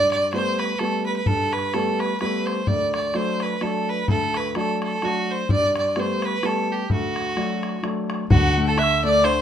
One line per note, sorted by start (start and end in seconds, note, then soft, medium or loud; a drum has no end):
0.00 0.32 G2 medium
0.00 0.10 D5 loud
0.11 0.31 D5 medium
0.11 bodhran soft
0.33 0.71 G3 soft
0.33 0.71 A3 soft
0.33 0.71 B3 medium
0.33 0.60 C5 medium
0.33 bodhran soft
0.59 0.80 B4 medium
0.59 bodhran soft
0.79 1.18 G3 soft
0.79 1.18 A3 soft
0.79 1.18 B3 soft
0.79 1.06 A4 medium
0.79 bodhran soft
1.06 1.16 B4 medium
1.16 1.28 B4 medium
1.26 1.73 G2 medium
1.26 1.54 A4 medium
1.26 bodhran medium
1.52 1.75 B4 medium
1.52 bodhran soft
1.74 2.12 G3 soft
1.74 2.12 A3 soft
1.74 2.12 B3 soft
1.74 2.01 A4 medium
1.74 bodhran soft
1.99 2.20 B4 medium
1.99 bodhran soft
2.20 2.59 G3 soft
2.20 2.59 A3 soft
2.20 2.59 B3 soft
2.20 2.47 B4 medium
2.20 bodhran soft
2.46 2.69 C5 medium
2.46 bodhran soft
2.67 3.13 D2 soft
2.67 2.94 D5 medium
2.67 bodhran medium
2.94 3.17 D5 medium
2.94 bodhran medium
3.14 3.52 F#3 soft
3.14 3.52 A3 soft
3.14 3.53 D4 soft
3.14 3.43 C5 medium
3.14 bodhran soft
3.40 3.64 B4 medium
3.40 bodhran soft
3.61 3.99 F#3 soft
3.61 3.99 A3 soft
3.61 4.00 D4 soft
3.61 3.91 A4 medium
3.61 bodhran soft
3.89 4.09 B4 medium
4.08 4.54 D2 medium
4.08 4.38 A4 medium
4.08 bodhran medium
4.34 4.56 B4 medium
4.34 bodhran soft
4.55 4.93 F#3 soft
4.55 4.94 A3 soft
4.55 4.94 D4 soft
4.55 4.81 A4 medium
4.55 bodhran soft
4.82 5.06 A4 medium
4.82 bodhran soft
5.02 5.40 F#3 soft
5.02 5.41 A3 soft
5.02 5.41 D4 soft
5.02 5.32 F#4 medium
5.02 bodhran soft
5.31 5.51 C5 medium
5.49 5.96 G2 medium
5.49 5.76 D5 loud
5.49 bodhran medium
5.76 6.01 D5 medium
5.76 bodhran soft
5.96 6.34 G3 soft
5.96 6.34 A3 soft
5.96 6.35 B3 soft
5.96 6.27 C5 medium
5.96 bodhran medium
6.22 6.47 B4 medium
6.22 bodhran soft
6.43 6.81 G3 soft
6.43 6.81 A3 soft
6.43 6.81 B3 soft
6.43 6.74 A4 medium
6.43 bodhran medium
6.72 6.92 G4 medium
6.90 7.36 D2 medium
6.90 7.81 F#4 medium
6.90 bodhran medium
7.16 bodhran soft
7.37 7.75 F#3 soft
7.37 7.75 A3 soft
7.37 7.75 D4 soft
7.37 bodhran soft
7.63 bodhran soft
7.83 8.21 F#3 soft
7.83 8.21 A3 soft
7.83 8.21 D4 soft
7.83 bodhran medium
8.10 bodhran medium
8.30 9.42 D2 medium
8.30 8.76 D3 medium
8.30 8.65 F#4 loud
8.30 8.70 F#5 medium
8.30 bodhran loud
8.44 bodhran soft
8.57 8.77 A3 medium
8.67 8.79 A4 medium
8.67 8.80 A5 medium
8.77 9.03 D3 medium
8.77 9.04 E5 medium
8.77 8.84 F#6 medium
8.77 bodhran medium
8.83 9.04 E6 medium
9.04 9.24 A3 medium
9.04 9.26 D5 loud
9.04 9.10 E6 medium
9.09 9.25 D6 medium
9.24 9.42 D3 medium
9.24 9.42 C5 medium
9.24 9.30 D6 medium
9.24 bodhran medium
9.29 9.42 C6 medium